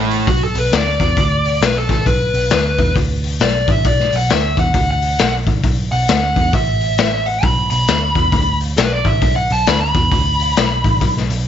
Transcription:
Already playing: picked electric bass A1, distorted electric guitar A2
0.11 open hi-hat
0.27 picked electric bass B1, lead electric guitar F#4, kick, open hi-hat
0.44 lead electric guitar A4
0.55 picked electric bass B1, lead electric guitar B4, open hi-hat
0.72 picked electric bass D2, lead electric guitar D5, snare, open hi-hat
1.00 picked electric bass E2, kick, open hi-hat
1.17 picked electric bass D2, kick, open hi-hat
1.45 open hi-hat
1.61 picked electric bass B1, lead electric guitar B4, snare, open hi-hat
1.78 lead electric guitar A4
1.89 picked electric bass A1, lead electric guitar A4, kick, snare, open hi-hat
2.06 picked electric bass B1, lead electric guitar B4, kick, open hi-hat
2.34 picked electric bass B1, open hi-hat
2.50 picked electric bass D2, snare, open hi-hat
2.79 picked electric bass E2, kick, open hi-hat
2.96 picked electric bass D2, kick, open hi-hat
3.24 open hi-hat
3.40 picked electric bass B1, lead electric guitar D5, snare, open hi-hat
3.68 picked electric bass A1, lead electric guitar E5, kick, open hi-hat
3.85 picked electric bass B1, lead electric guitar D5, kick, open hi-hat
4.00 snare
4.12 picked electric bass B1, open hi-hat
4.16 lead electric guitar F#5
4.30 picked electric bass D2, lead electric guitar E5, snare, open hi-hat
4.57 picked electric bass E2, lead electric guitar F#5, kick, open hi-hat
4.74 picked electric bass D2, kick, open hi-hat
4.91 lead electric guitar F#5
5.02 open hi-hat
5.19 picked electric bass B1, snare, open hi-hat
5.47 picked electric bass A1, kick, open hi-hat
5.63 picked electric bass B1, kick, open hi-hat
5.92 picked electric bass B1, lead electric guitar F#5, open hi-hat
6.08 picked electric bass D2, snare, open hi-hat
6.36 picked electric bass E2, kick, open hi-hat
6.53 picked electric bass A1, lead electric guitar E5, kick, open hi-hat
6.81 open hi-hat
6.98 snare, open hi-hat
7.26 lead electric guitar F#5, open hi-hat
7.43 picked electric bass B1, lead electric guitar B5, kick, open hi-hat
7.70 picked electric bass B1, lead electric guitar B5, open hi-hat
7.88 picked electric bass D2, snare, open hi-hat
8.15 picked electric bass E2, kick, open hi-hat
8.32 picked electric bass D2, kick, open hi-hat
8.60 open hi-hat
8.77 picked electric bass B1, lead electric guitar B4, snare, open hi-hat
8.92 lead electric guitar D5
9.05 picked electric bass A1, lead electric guitar E5, kick, open hi-hat
9.22 picked electric bass B1, kick, open hi-hat
9.36 lead electric guitar F#5
9.50 picked electric bass B1, lead electric guitar A5, open hi-hat
9.66 picked electric bass D2, lead electric guitar B5, snare, open hi-hat
9.81 lead electric guitar B5
9.95 picked electric bass E2, kick, open hi-hat
10.12 picked electric bass D2, kick, open hi-hat
10.39 open hi-hat
10.56 picked electric bass B1, snare, open hi-hat
10.84 picked electric bass A1, kick, open hi-hat
11.01 picked electric bass B1, kick, open hi-hat
11.17 snare
11.30 picked electric bass B1, open hi-hat

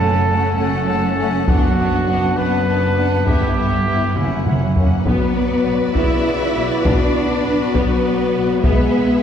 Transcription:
Already playing: double bass section F#1, cello section F#2, violin section C#4, trumpet A4
0.00 viola section A3, violin section F#5
0.28 french horn section A3 C#4, viola section A3, violin section C#4 F#5
0.57 double bass section F#1, cello section F#2, viola section A3, violin section C#4 F#5, trumpet A4
0.87 viola section A3, violin section C#4 F#5
1.16 french horn section A3 C#4, viola section A3, violin section C#4 F#5
1.47 double bass section F#1, cello section F#2, viola section B3, violin section D4 F#5, trumpet F#4, taiko
1.77 viola section B3, violin section D4 F#5
2.06 viola section B3, french horn section B3 D4, violin section D4 F#5
2.37 double bass section F#1, cello section F#2, viola section B3, violin section D4 F#5, trumpet B4
2.67 viola section B3, violin section D4 F#5
2.96 viola section B3, french horn section B3 D4, violin section D4 F#5
3.26 double bass section G1, cello section G2, viola section B3, violin section E4 E5, trumpet G4, taiko
3.56 viola section B3, violin section E4 E5
3.86 french horn section B3 E4, viola section B3, violin section E4 E5
4.16 double bass section F#1, cello section F#2, viola section A#3, violin section C#4 F#5, trumpet E4, taiko mid
4.46 viola section A#3, violin section C#4 F#5, taiko mid
4.76 french horn section A#3 C#4, viola section A#3, violin section C#4 F#5, taiko low
5.06 double bass section B1, french horn section F#3, cello section B3, viola section B3 F#4, violin section B4 D5, taiko
5.66 double bass section B1, viola section B3
5.95 double bass section B1, french horn section C#3, viola section B3, cello section E4, violin section E5, taiko
6.25 double bass section B1, viola section B3
6.56 double bass section B1, viola section B3
6.85 double bass section B1, viola section B3, french horn section B3, cello section D4, violin section D5, taiko
7.44 double bass section B1, viola section B3
7.74 double bass section B1, french horn section F#3, cello section B3, viola section B3, violin section B4, taiko
8.04 double bass section B1, viola section B3
8.34 double bass section B1, viola section B3
8.63 double bass section B1, french horn section G#3, cello section B3, viola section B3 G#4, violin section B4 E5, taiko

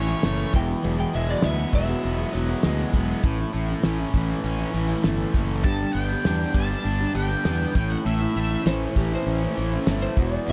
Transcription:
Already playing: fingered electric bass A1, distorted electric guitar E3 A3 C#4, lead electric guitar C#5
0.08 steel-string acoustic guitar A3 C#4 E4, closed hi-hat
0.23 fingered electric bass F#1, steel-string acoustic guitar A2 E3 A3 C#4 E4, snare, closed hi-hat
0.53 fingered electric bass E1, distorted electric guitar E2, steel-string acoustic guitar F#3 G#3 B3 E4, electric slide guitar G5, kick, closed hi-hat
0.83 fingered electric bass E1, steel-string acoustic guitar E2 B2 F#3 G#3 B3 E4, closed hi-hat
0.97 steel-string acoustic guitar F#3 G#3 B3 E4, electric slide guitar G5
1.13 fingered electric bass E1, distorted electric guitar G#3, electric slide guitar E5, closed hi-hat
1.29 steel-string acoustic guitar F#3 G#3 B3 E4, electric slide guitar D5
1.42 fingered electric bass D2, steel-string acoustic guitar E2 B2 F#3 G#3 B3 E4, electric slide guitar E5, snare, closed hi-hat
1.57 steel-string acoustic guitar F#3 G#3 B3 E4
1.72 fingered electric bass E1, steel-string acoustic guitar F#3 G#3 B3 E4, electric slide guitar E5, kick, closed hi-hat
1.87 steel-string acoustic guitar F#3 G#3 B3 E4, snare, closed hi-hat
2.02 fingered electric bass E1, distorted electric guitar B3, closed hi-hat
2.18 steel-string acoustic guitar F#3 G#3 B3 E4
2.33 fingered electric bass E1, steel-string acoustic guitar F#3 G#3 B3 E4, closed hi-hat
2.49 steel-string acoustic guitar F#3 G#3 B3 E4
2.63 fingered electric bass D2, steel-string acoustic guitar E2 B2 F#3 G#3 B3 E4, snare, closed hi-hat
2.93 fingered electric bass E1, steel-string acoustic guitar F#3 G#3 B3 E4, kick, closed hi-hat
3.09 closed hi-hat
3.23 fingered electric bass A1, steel-string acoustic guitar A2 E3 A3 C#4 E4, kick, closed hi-hat
3.39 steel-string acoustic guitar A3 C#4 E4
3.53 fingered electric bass A1, distorted electric guitar A3, closed hi-hat
3.70 steel-string acoustic guitar A3 C#4 E4
3.83 fingered electric bass A1, steel-string acoustic guitar A2 E3 A3 C#4 E4, snare, closed hi-hat
4.00 steel-string acoustic guitar A3 C#4 E4
4.14 fingered electric bass A1, steel-string acoustic guitar E3 A3 C#4, kick, closed hi-hat
4.18 steel-string acoustic guitar E4
4.31 steel-string acoustic guitar A3 C#4 E4
4.43 fingered electric bass A1, distorted electric guitar C#4, closed hi-hat
4.59 steel-string acoustic guitar A3 C#4 E4
4.74 fingered electric bass A1, steel-string acoustic guitar E3 A3 C#4 E4, closed hi-hat
4.88 steel-string acoustic guitar A3 C#4 E4, closed hi-hat
5.02 fingered electric bass G1, steel-string acoustic guitar A2 E3 A3 C#4 E4, snare, closed hi-hat
5.34 fingered electric bass F#1, steel-string acoustic guitar E3 A3 C#4 E4, kick, closed hi-hat
5.64 fingered electric bass G1, steel-string acoustic guitar G2 D3 G3 B3 D4 G4, lead electric guitar A5, kick, closed hi-hat
5.80 steel-string acoustic guitar G3 B3 D4 G4
5.93 fingered electric bass G1, distorted electric guitar B3, lead electric guitar G5, closed hi-hat
6.12 steel-string acoustic guitar G3 B3 D4 G4
6.25 fingered electric bass E2, steel-string acoustic guitar G2 D3 G3 B3 D4 G4, snare, closed hi-hat
6.42 steel-string acoustic guitar G3 B3 D4 G4
6.54 fingered electric bass G1, steel-string acoustic guitar G3 B3 D4 G4, lead electric guitar A5, kick, closed hi-hat
6.70 steel-string acoustic guitar G3 B3 D4 G4, closed hi-hat
6.84 fingered electric bass G1, distorted electric guitar D4, closed hi-hat
7.00 steel-string acoustic guitar G3 B3 D4 G4
7.14 fingered electric bass G1, steel-string acoustic guitar G3 B3 D4 G4, lead electric guitar G5, closed hi-hat
7.29 steel-string acoustic guitar G3 B3 D4 G4
7.45 fingered electric bass E2, steel-string acoustic guitar G2 D3 G3 B3 D4 G4, snare, closed hi-hat
7.74 fingered electric bass A1, distorted electric guitar A2, steel-string acoustic guitar E3 A3 C#4 E4, kick, closed hi-hat
7.91 lead electric guitar F#5, closed hi-hat
8.04 fingered electric bass A1, steel-string acoustic guitar A2 E3 A3 C#4 E4, lead electric guitar E5, closed hi-hat
8.20 steel-string acoustic guitar A3 C#4 E4
8.36 fingered electric bass A1, distorted electric guitar A3, closed hi-hat
8.51 steel-string acoustic guitar A3 C#4 E4
8.65 fingered electric bass A1, steel-string acoustic guitar A2 E3 A3 C#4 E4, electric slide guitar C5, snare, closed hi-hat
8.96 fingered electric bass A1, steel-string acoustic guitar E3 A3 C#4 E4, electric slide guitar G4, kick, closed hi-hat
9.12 steel-string acoustic guitar A3 C#4 E4, electric slide guitar C5
9.26 fingered electric bass A1, distorted electric guitar C#4, closed hi-hat
9.43 steel-string acoustic guitar A3 C#4 E4
9.57 fingered electric bass A1, steel-string acoustic guitar E3 A3 C#4, closed hi-hat
9.61 steel-string acoustic guitar E4
9.72 steel-string acoustic guitar A3 C#4 E4, closed hi-hat
9.86 fingered electric bass G1, steel-string acoustic guitar A2 E3, distorted electric guitar A3, snare, closed hi-hat
9.91 steel-string acoustic guitar A3 C#4 E4
10.02 electric slide guitar C5
10.17 fingered electric bass E1, distorted electric guitar E2, steel-string acoustic guitar E3 G#3 B3 F#4, kick, closed hi-hat
10.33 electric slide guitar D5
10.48 fingered electric bass E1, steel-string acoustic guitar E2 B2 E3 G#3, closed hi-hat

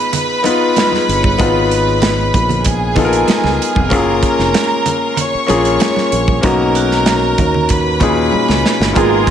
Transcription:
Already playing: grand piano B3 D#4 F4 B4, vibraphone G#4, violin section B4 B5
0.13 closed hi-hat, muted conga, low conga
0.43 grand piano B3 D#4 F4 B4, closed hi-hat, muted conga
0.76 vibraphone F4, snare, closed hi-hat, high conga
0.92 snare, high conga
0.96 vibraphone G#4
1.09 fingered electric bass G1, closed hi-hat
1.16 vibraphone C#5
1.23 kick, high conga
1.38 fingered electric bass G#1, grand piano B3 D#4 F4 B4, kick, closed hi-hat, muted conga
1.71 closed hi-hat
2.02 snare, closed hi-hat, high conga
2.34 fingered electric bass A#1, kick, closed hi-hat, muted conga
2.49 closed hi-hat, low conga
2.64 violin section G#4 G#5, kick, closed hi-hat, muted conga
2.95 grand piano B3 D#4 F4 A4, kick, closed hi-hat, muted conga, low conga
3.05 grand piano A#4
3.13 closed hi-hat
3.28 snare, closed hi-hat, high conga
3.44 fingered electric bass C#2, snare, high conga
3.62 closed hi-hat
3.75 fingered electric bass F1, kick, high conga
3.89 fingered electric bass F#1, grand piano A#3 C#4 F4 G#4, violin section A#4 A#5, kick, closed hi-hat, muted conga
4.23 kick, closed hi-hat
4.39 fingered electric bass F1, snare
4.54 snare, closed hi-hat, high conga
4.86 closed hi-hat, muted conga, low conga
5.17 violin section C#5 C#6, closed hi-hat, low conga
5.34 muted fingered electric bass stroke
5.47 fingered electric bass A#1, grand piano A#3 C#4 F4 G#4, closed hi-hat, muted conga
5.65 closed hi-hat
5.80 snare, closed hi-hat, high conga
5.96 snare, high conga
6.12 fingered electric bass A#1, closed hi-hat
6.28 kick, high conga
6.41 fingered electric bass B1, grand piano A#3 C#4 D#4 F#4, kick, closed hi-hat, muted conga
6.45 violin section A#4 A#5
6.75 vibraphone F#4, closed hi-hat
6.91 snare
6.98 vibraphone A#4
7.06 snare, closed hi-hat, high conga
7.38 fingered electric bass D#2, kick, closed hi-hat, muted conga
7.54 low conga
7.69 violin section B4 B5, kick, closed hi-hat, muted conga
8.00 grand piano A#2 C#4 D#4 G#4, kick, closed hi-hat, muted conga, low conga
8.32 muted fingered electric bass stroke, high conga
8.48 fingered electric bass C#2, snare, high conga
8.66 snare
8.80 fingered electric bass G1, snare
8.93 fingered electric bass G#1, string section D#3 F4 A#4, horn section G#3 G#4, grand piano A#3 B3 D#4 F4, violin section A#4 A#5, kick, closed hi-hat, muted conga
9.27 kick

